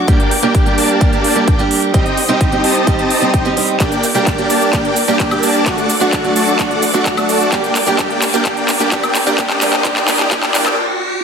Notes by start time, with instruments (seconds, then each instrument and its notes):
Already playing: string section D6
0.07 detuned saw bass G1, steel-string acoustic guitar G3 A#3 D4 G4, supersaw synth A#3 D4 G4 D5 G5, string section A#4 D5 G5, kick, closed hi-hat
0.20 closed hi-hat
0.31 open hi-hat
0.42 detuned saw bass G1, steel-string acoustic guitar G3 A#3 D4 G4, supersaw synth A#3 D4 G4 D5 G5, closed hi-hat
0.55 kick, closed hi-hat
0.66 steel-string acoustic guitar G3 A#3 D4 G4, closed hi-hat
0.78 detuned saw bass G1, supersaw synth A#3 D4 G4 D5 A5, open hi-hat
0.90 closed hi-hat
1.00 steel-string acoustic guitar G3 A#3 D4 G4, kick, closed hi-hat
1.13 detuned saw bass G1, supersaw synth A#3 D4 G4 D5 A5, closed hi-hat
1.24 open hi-hat
1.35 steel-string acoustic guitar G3 A#3 D4 G4, closed hi-hat
1.48 detuned saw bass G1, supersaw synth A#3 D4 G4 D5 G5, kick, closed hi-hat
1.59 steel-string acoustic guitar G3 A#3 D4 G4, closed hi-hat
1.71 open hi-hat
1.83 closed hi-hat
1.94 detuned saw bass C2, steel-string acoustic guitar G3 C4 D#4 G4, supersaw synth C4 D#4 G4 D#5 G5, string section C5 D#5 D#6, kick, closed hi-hat
2.06 closed hi-hat
2.17 open hi-hat
2.28 detuned saw bass C2, steel-string acoustic guitar G3 C4 D#4 G4, supersaw synth C4 D#4 G4 D#5 G5, closed hi-hat
2.41 kick, closed hi-hat
2.52 steel-string acoustic guitar G3 C4 D#4 G4, closed hi-hat
2.64 detuned saw bass C2, supersaw synth C4 D#4 G4 D#5 A5, open hi-hat
2.76 closed hi-hat
2.87 steel-string acoustic guitar G3 C4 D#4 G4, kick, closed hi-hat
2.99 detuned saw bass C2, supersaw synth C4 D#4 G4 D#5 A5, closed hi-hat
3.10 open hi-hat
3.21 steel-string acoustic guitar G3 C4 D#4 G4, closed hi-hat
3.34 detuned saw bass C2, supersaw synth C4 D#4 G4 D#5 G5, kick, closed hi-hat
3.45 steel-string acoustic guitar G3 C4 D#4 G4, closed hi-hat
3.56 steel-string acoustic guitar G3 C4 D#4 G4, open hi-hat
3.69 closed hi-hat
3.79 detuned saw bass G1, steel-string acoustic guitar G3 A#3 D4 G4, supersaw synth A#3 D4 G4 D5 G5, string section A#4 D5 D6, kick, clap, closed hi-hat, riser, cabasa
3.92 closed hi-hat, cabasa
4.03 open hi-hat, cabasa
4.14 detuned saw bass G1, steel-string acoustic guitar G3 A#3 D4 G4, supersaw synth A#3 D4 G4 D5 G5, closed hi-hat, cabasa
4.27 kick, clap, closed hi-hat, cabasa
4.38 steel-string acoustic guitar G3 A#3 D4 G4, closed hi-hat
4.50 detuned saw bass G1, supersaw synth A#3 D4 G4 D5 A5, open hi-hat, cabasa
4.62 closed hi-hat, cabasa
4.73 detuned saw bass G1, steel-string acoustic guitar G3 A#3 D4 G4, supersaw synth A#3 D4 G4 D5 G5, kick, clap, closed hi-hat, cabasa
4.85 closed hi-hat
4.96 open hi-hat, cabasa
5.08 detuned saw bass G2, steel-string acoustic guitar G3 A#3 D4 G4, supersaw synth A#3 D4 G4 D5 G5, closed hi-hat, cabasa
5.20 kick, clap, closed hi-hat, cabasa
5.31 steel-string acoustic guitar G3 A#3 D4 G4, closed hi-hat, cabasa, high woodblock
5.43 detuned saw bass G2, supersaw synth A#3 D4 G4 D5 A5, open hi-hat, cabasa
5.55 closed hi-hat, cabasa
5.66 detuned saw bass D2, steel-string acoustic guitar F#3 A3 D4 F#4, supersaw synth A3 D4 F#4 D5 F#5, string section A4 F#5, kick, clap, closed hi-hat, cabasa
5.78 closed hi-hat, cabasa
5.90 open hi-hat, cabasa
6.00 detuned saw bass D2, steel-string acoustic guitar F#3 A3 D4 F#4, supersaw synth A3 D4 F#4 D5 F#5, closed hi-hat, cabasa
6.13 kick, clap, closed hi-hat, cabasa
6.24 steel-string acoustic guitar F#3 A3 D4 F#4, closed hi-hat
6.36 detuned saw bass D2, supersaw synth A3 D4 F#4 D5 A5, open hi-hat, cabasa
6.48 closed hi-hat, cabasa
6.59 detuned saw bass D2, steel-string acoustic guitar F#3 A3 D4 F#4, supersaw synth A3 D4 F#4 D5 F#5, kick, clap, closed hi-hat, cabasa
6.71 closed hi-hat
6.83 open hi-hat, cabasa
6.93 detuned saw bass D2, steel-string acoustic guitar F#3 A3 D4 F#4, supersaw synth A3 D4 F#4 D5 F#5, closed hi-hat, cabasa
7.06 kick, clap, closed hi-hat, cabasa
7.17 steel-string acoustic guitar F#3 A3 D4 F#4, closed hi-hat, cabasa, high woodblock
7.29 detuned saw bass D2, supersaw synth A3 D4 F#4 D5 A5, open hi-hat, cabasa
7.41 closed hi-hat, cabasa
7.51 detuned saw bass G1, steel-string acoustic guitar G3 A#3 D4 G4, supersaw synth A#3 D4 G4 D5 G5, string section A#4 G5, kick, clap, closed hi-hat, cabasa
7.64 closed hi-hat, cabasa
7.76 clap, open hi-hat, cabasa
7.86 detuned saw bass G1, steel-string acoustic guitar G3 A#3 D4 G4, supersaw synth A#3 D4 G4 D5 G5, closed hi-hat, cabasa
7.98 detuned saw bass G1, steel-string acoustic guitar G3 A#3 D4 G4, supersaw synth A#3 D4 G4 D5 G5, kick, clap, closed hi-hat, cabasa
8.10 closed hi-hat
8.22 clap, open hi-hat, cabasa
8.33 detuned saw bass G1, steel-string acoustic guitar G3 A#3 D4 G4, supersaw synth A#3 D4 G4 D5 G5, closed hi-hat, cabasa
8.45 detuned saw bass G1, steel-string acoustic guitar G3 A#3 D4 G4, supersaw synth A#3 D4 G4 D5 G5, kick, clap, closed hi-hat, cabasa
8.57 closed hi-hat
8.69 clap, open hi-hat, cabasa
8.79 detuned saw bass G1, steel-string acoustic guitar G3 A#3 D4 G4, supersaw synth A#3 D4 G4 D5 G5, closed hi-hat, cabasa
8.91 detuned saw bass G2, steel-string acoustic guitar G3 A#3 D4 G4, supersaw synth A#3 D4 G4 D5 G5, kick, clap, closed hi-hat, cabasa
9.03 closed hi-hat, cabasa, high woodblock
9.15 clap, open hi-hat, cabasa
9.26 detuned saw bass G2, steel-string acoustic guitar G3 A#3 D4 G4, supersaw synth A#3 D4 G4 D5 G5, closed hi-hat, cabasa
9.38 detuned saw bass C2, steel-string acoustic guitar G3 A#3 D4 G4, supersaw synth A#3 D4 G4 D5 G5, string section C5 D#5 D#6, kick, clap, closed hi-hat, cabasa
9.50 clap, closed hi-hat, cabasa
9.61 detuned saw bass C2, steel-string acoustic guitar G3 A#3 D4 G4, supersaw synth A#3 D4 G4 D5 G5, clap, open hi-hat, cabasa
9.73 clap, cabasa
9.84 detuned saw bass C2, steel-string acoustic guitar G3 A#3 D4 G4, supersaw synth A#3 D4 G4 D5 G5, kick, clap, closed hi-hat, cabasa
9.96 clap, closed hi-hat, cabasa
10.08 detuned saw bass C2, steel-string acoustic guitar G3 A#3 D4 G4, supersaw synth A#3 D4 G4 D5 G5, clap, open hi-hat, cabasa
10.20 clap, cabasa
10.31 detuned saw bass C2, steel-string acoustic guitar G3 A#3 D4 G4, supersaw synth A#3 D4 G4 D5 G5, kick, clap, closed hi-hat, cabasa
10.43 clap, closed hi-hat, cabasa
10.54 detuned saw bass C2, steel-string acoustic guitar G3 A#3 D4 G4, supersaw synth A#3 D4 G4 D5 G5, clap, open hi-hat, cabasa
10.66 clap, cabasa, high woodblock